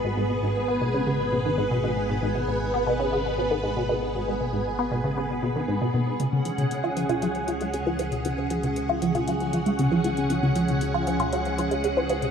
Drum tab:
HH |----------------|----------------|----------------|x-xxx-xxxxxxx-xx|
T1 |----------------|----------------|----------------|---o---o-------o|

HH |x-xxx-xxxxxxx-xx|x-xxx-xxxxxxx-xx|
T1 |---o---o--------|---o---o-------o|